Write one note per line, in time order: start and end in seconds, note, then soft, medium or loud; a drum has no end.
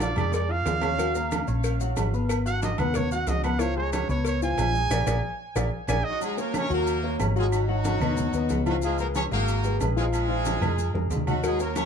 0.00 0.12 A#1 medium
0.00 0.11 F4 medium
0.00 0.17 D5 medium
0.00 0.11 F5 medium
0.00 0.11 F6 medium
0.00 cowbell medium
0.00 high conga loud
0.00 high timbale medium
0.00 low agogo medium
0.00 maracas medium
0.16 0.63 F2 loud
0.16 0.44 G#3 medium
0.16 0.44 G#4 medium
0.16 0.34 D5 medium
0.16 0.44 G#5 medium
0.16 cowbell medium
0.16 high conga soft
0.16 low conga medium
0.16 low agogo loud
0.16 claves medium
0.16 maracas soft
0.32 0.53 D5 medium
0.32 cowbell loud
0.32 high conga soft
0.32 low timbale medium
0.32 maracas medium
0.49 0.76 F4 medium
0.49 0.76 F5 medium
0.49 1.46 F5 loud
0.49 0.76 F6 medium
0.49 high conga soft
0.66 1.42 D#2 loud
0.66 cowbell medium
0.66 high conga medium
0.66 low timbale loud
0.66 low agogo medium
0.66 maracas medium
0.82 0.95 C#4 medium
0.82 0.95 C#5 medium
0.82 0.96 C#6 medium
0.82 cowbell medium
0.82 high conga medium
0.82 low timbale medium
0.82 low agogo loud
0.82 claves medium
0.82 maracas soft
0.98 1.12 F#3 medium
0.98 1.12 F#4 medium
0.98 1.12 F#5 medium
0.98 cowbell loud
0.98 high conga soft
0.98 low agogo medium
0.98 maracas medium
1.15 1.42 A#3 medium
1.15 1.42 A#4 medium
1.15 1.42 A#5 medium
1.15 high conga soft
1.15 maracas medium
1.31 cowbell medium
1.31 high conga loud
1.31 low timbale medium
1.31 low agogo loud
1.31 claves medium
1.31 maracas medium
1.48 1.94 A#1 loud
1.48 1.75 C#4 medium
1.48 1.75 C#5 medium
1.48 1.75 C#6 medium
1.48 high conga soft
1.48 maracas soft
1.64 cowbell loud
1.64 high conga soft
1.64 low agogo medium
1.64 maracas medium
1.80 2.07 F#3 medium
1.80 2.08 F#4 medium
1.80 2.08 F#5 medium
1.80 high conga soft
1.80 maracas medium
1.96 2.73 G#1 medium
1.96 cowbell medium
1.96 high conga medium
1.96 low timbale medium
1.96 low agogo loud
1.96 claves medium
1.96 maracas medium
2.13 2.40 B3 medium
2.13 2.40 B4 medium
2.13 2.41 B5 medium
2.13 high conga soft
2.13 maracas soft
2.29 cowbell loud
2.29 high conga soft
2.29 low agogo loud
2.29 claves medium
2.29 maracas medium
2.46 2.73 F#4 medium
2.46 2.73 F#5 medium
2.46 2.62 F#5 loud
2.46 2.73 F#6 medium
2.46 high conga soft
2.46 maracas medium
2.62 2.81 D#5 medium
2.62 cowbell medium
2.62 high conga loud
2.62 low timbale medium
2.62 low agogo medium
2.62 maracas medium
2.78 3.24 D#2 loud
2.78 3.06 B3 medium
2.78 3.06 B4 medium
2.78 2.98 F#5 medium
2.78 3.06 B5 medium
2.78 cowbell medium
2.78 high conga soft
2.78 low conga medium
2.78 low agogo loud
2.78 claves medium
2.78 maracas soft
2.94 3.12 C#5 loud
2.94 cowbell loud
2.94 high conga soft
2.94 low conga medium
2.94 maracas medium
3.11 3.39 F#4 medium
3.11 3.30 F#5 loud
3.11 3.39 F#5 medium
3.11 3.39 F#6 medium
3.11 high conga soft
3.11 maracas medium
3.27 4.03 C#2 medium
3.27 3.44 D#5 medium
3.27 cowbell medium
3.27 high conga medium
3.27 low timbale medium
3.27 low agogo medium
3.27 maracas medium
3.44 3.58 B3 medium
3.44 3.58 B4 medium
3.44 3.62 F#5 medium
3.44 3.58 B5 medium
3.44 cowbell medium
3.44 high conga medium
3.44 low agogo loud
3.44 claves medium
3.44 maracas soft
3.59 3.73 F3 medium
3.59 3.74 F4 medium
3.59 3.76 C#5 loud
3.59 3.74 F5 medium
3.59 cowbell loud
3.59 high conga soft
3.59 low agogo medium
3.59 maracas medium
3.76 4.03 G#3 medium
3.76 4.03 G#4 medium
3.76 3.92 C#5 loud
3.76 4.03 G#5 medium
3.76 high conga soft
3.93 4.09 C#5 medium
3.93 cowbell medium
3.93 high conga loud
3.93 low timbale medium
3.93 low agogo loud
3.93 claves medium
3.93 maracas medium
4.09 4.55 C#2 loud
4.09 4.36 B3 medium
4.09 4.36 B4 medium
4.09 4.26 C#5 medium
4.09 4.36 B5 medium
4.09 high conga soft
4.09 maracas soft
4.25 4.42 C#5 loud
4.25 cowbell loud
4.25 high conga soft
4.25 low agogo medium
4.25 maracas medium
4.42 4.69 F3 medium
4.42 4.69 F4 medium
4.42 4.69 F5 medium
4.42 5.38 G#5 loud
4.42 high conga soft
4.42 maracas medium
4.57 4.88 A#1 medium
4.57 cowbell medium
4.57 high conga medium
4.57 low timbale medium
4.57 low agogo loud
4.57 claves medium
4.57 maracas medium
4.74 4.88 G#3 medium
4.74 4.88 G#4 medium
4.74 4.88 G#5 medium
4.74 high conga soft
4.74 maracas soft
4.90 5.03 A#1 medium
4.90 5.01 G#4 loud
4.90 5.02 A#4 loud
4.90 5.02 D5 loud
4.90 cowbell loud
4.90 high conga medium
4.90 high timbale loud
4.90 claves loud
4.90 maracas loud
5.06 5.19 A#1 loud
5.06 5.17 G#4 loud
5.06 5.17 A#4 medium
5.06 5.17 D5 loud
5.06 cowbell loud
5.06 high conga medium
5.06 high timbale loud
5.06 claves loud
5.06 maracas loud
5.55 5.68 A#1 medium
5.55 5.67 G#4 medium
5.55 5.66 A#4 medium
5.55 5.67 D5 medium
5.55 cowbell loud
5.55 high conga loud
5.55 high timbale loud
5.55 claves loud
5.55 maracas loud
5.88 6.00 A#1 loud
5.88 5.99 G#4 loud
5.88 5.99 A#4 loud
5.88 5.99 D5 loud
5.88 6.06 G#5 loud
5.88 cowbell loud
5.88 high conga loud
5.88 high timbale loud
5.88 claves loud
5.88 maracas loud
6.05 6.22 F#3 medium
6.05 6.22 D#4 medium
6.05 6.22 F#4 medium
6.05 6.21 D#5 loud
6.21 6.34 F#3 medium
6.21 6.38 G#3 medium
6.21 6.38 D#4 medium
6.21 6.35 F#4 medium
6.21 6.38 G#4 loud
6.21 6.35 F#5 medium
6.21 high conga soft
6.21 low agogo medium
6.21 maracas medium
6.37 6.64 A#3 medium
6.37 6.55 A#3 medium
6.37 6.54 F#4 medium
6.37 6.65 A#4 medium
6.37 6.55 A#4 medium
6.37 6.65 C#5 medium
6.37 high conga soft
6.37 maracas medium
6.54 6.72 C#4 loud
6.54 6.72 A#4 medium
6.54 6.72 C#5 loud
6.54 high conga loud
6.54 low timbale medium
6.54 low agogo loud
6.54 claves medium
6.54 maracas medium
6.70 7.16 D#2 medium
6.70 6.97 F#3 medium
6.70 7.17 A#3 loud
6.70 6.97 F#4 medium
6.70 7.17 F#4 medium
6.70 7.17 A#4 loud
6.70 6.97 F#5 medium
6.70 high conga soft
6.70 maracas soft
6.87 high conga soft
6.87 low agogo medium
6.87 maracas medium
7.03 7.17 A#3 medium
7.03 7.17 A#4 medium
7.03 7.17 C#5 medium
7.03 high conga soft
7.20 7.95 G#1 loud
7.20 7.33 A#3 medium
7.20 7.33 A#4 medium
7.20 7.33 C#5 medium
7.20 high conga medium
7.20 low timbale medium
7.20 low agogo loud
7.20 claves medium
7.20 maracas medium
7.36 7.62 F#3 medium
7.36 7.46 G#3 medium
7.36 7.45 F4 medium
7.36 7.63 F#4 medium
7.36 7.46 G#4 loud
7.36 7.63 F#5 medium
7.36 high conga soft
7.36 maracas soft
7.52 8.63 F#3 loud
7.52 8.63 D#4 medium
7.52 8.63 F#4 loud
7.52 high conga soft
7.52 low agogo loud
7.52 claves medium
7.52 maracas medium
7.68 7.95 F#3 loud
7.68 7.95 F#4 medium
7.68 7.95 F#5 medium
7.68 high conga soft
7.85 high conga loud
7.85 low timbale medium
7.85 low agogo medium
7.85 maracas medium
8.00 8.31 D#2 loud
8.00 8.28 B3 medium
8.00 8.28 B4 medium
8.00 8.29 D#5 medium
8.00 high conga soft
8.00 low conga medium
8.00 low agogo loud
8.00 claves medium
8.00 maracas soft
8.17 high conga soft
8.17 low conga medium
8.17 maracas medium
8.33 8.49 D#2 medium
8.33 8.61 B3 medium
8.33 8.61 B4 medium
8.33 8.61 D#5 medium
8.33 high conga soft
8.33 maracas medium
8.49 9.26 C#2 loud
8.49 high conga medium
8.49 low timbale medium
8.49 low agogo medium
8.49 maracas medium
8.66 8.80 F3 loud
8.66 8.75 F#3 medium
8.66 8.75 D#4 medium
8.66 8.80 F4 loud
8.66 8.75 F#4 medium
8.66 8.80 F5 medium
8.66 high conga medium
8.66 low agogo loud
8.66 claves medium
8.66 maracas soft
8.82 8.96 F3 medium
8.82 8.99 G#3 medium
8.82 8.97 F4 medium
8.82 8.99 F4 medium
8.82 8.99 G#4 loud
8.82 8.97 F5 medium
8.82 high conga soft
8.82 low agogo medium
8.82 maracas medium
8.98 9.26 G#3 medium
8.98 9.07 A#3 medium
8.98 9.07 F#4 medium
8.98 9.26 G#4 medium
8.98 9.07 A#4 medium
8.98 9.26 B4 medium
8.98 high conga soft
8.98 maracas medium
9.15 9.23 C#4 loud
9.15 9.23 G#4 medium
9.15 9.23 C#5 loud
9.15 high conga loud
9.15 low timbale medium
9.15 low agogo loud
9.15 claves medium
9.15 maracas medium
9.31 9.77 G#1 loud
9.31 9.58 G#3 loud
9.31 9.78 A#3 loud
9.31 9.78 F#4 medium
9.31 9.58 G#4 medium
9.31 9.78 A#4 loud
9.31 9.58 F5 loud
9.31 high conga soft
9.31 maracas soft
9.48 high conga soft
9.48 low agogo medium
9.48 maracas medium
9.64 9.77 G#3 medium
9.64 9.78 G#4 medium
9.64 9.78 B4 medium
9.64 high conga soft
9.64 maracas medium
9.80 10.56 A#1 medium
9.80 9.94 G#3 medium
9.80 9.94 G#4 medium
9.80 9.94 B4 medium
9.80 high conga medium
9.80 low timbale medium
9.80 low agogo loud
9.80 claves medium
9.80 maracas medium
9.96 10.23 F3 medium
9.96 10.05 G#3 medium
9.96 10.23 F4 loud
9.96 10.06 F4 medium
9.96 10.05 G#4 loud
9.96 10.24 F5 medium
9.96 high conga soft
9.96 maracas soft
10.13 10.96 G#3 loud
10.13 10.96 F4 medium
10.13 10.96 G#4 loud
10.13 high conga soft
10.13 low agogo loud
10.13 claves medium
10.13 maracas medium
10.28 10.55 F3 loud
10.28 10.56 F4 medium
10.28 10.56 F5 medium
10.28 high conga soft
10.45 high conga loud
10.45 low timbale medium
10.45 low agogo medium
10.45 maracas medium
10.61 10.92 F2 loud
10.61 10.89 G#3 medium
10.61 10.89 G#4 medium
10.61 10.89 A#4 medium
10.61 high conga soft
10.61 low conga medium
10.61 low agogo loud
10.61 claves medium
10.61 maracas soft
10.79 high conga soft
10.79 maracas medium
10.94 11.09 F2 medium
10.94 11.21 G#3 medium
10.94 11.21 G#4 medium
10.94 11.21 A#4 medium
10.94 high conga medium
11.10 11.85 D#2 medium
11.10 low timbale medium
11.10 low agogo medium
11.10 maracas medium
11.16 low conga medium
11.27 11.40 F#3 medium
11.27 11.43 F#3 medium
11.27 11.43 D#4 medium
11.27 11.40 F#4 medium
11.27 11.43 F#4 medium
11.27 11.41 F#5 medium
11.27 low conga medium
11.27 low agogo loud
11.27 claves medium
11.27 maracas soft
11.43 11.57 F#3 medium
11.43 11.60 G#3 medium
11.43 11.60 D#4 medium
11.43 11.57 F#4 medium
11.43 11.60 G#4 loud
11.43 11.57 F#5 medium
11.43 cowbell loud
11.43 high conga soft
11.43 low agogo medium
11.43 maracas medium
11.60 11.85 A#3 medium
11.60 11.76 A#3 medium
11.60 11.76 F#4 medium
11.60 11.85 A#4 medium
11.60 11.76 A#4 medium
11.60 11.85 C#5 medium
11.60 high conga soft
11.60 maracas medium
11.76 11.85 C#4 loud
11.76 11.85 A#4 medium
11.76 11.85 C#5 loud
11.76 cowbell medium
11.76 high conga loud
11.76 low timbale medium
11.76 low agogo loud
11.76 claves medium
11.76 maracas medium